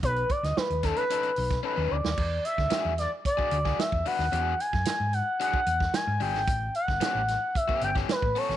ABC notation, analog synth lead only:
X:1
M:4/4
L:1/16
Q:1/4=112
K:E
V:1 name="Analog synth lead"
B2 =d ^d B2 A B4- B B2 =d2- | =d2 e4 d2 d4 e2 f2- | f2 g4 f2 f4 g2 =g2- | =g2 f6 e2 g2 B2 c2 |]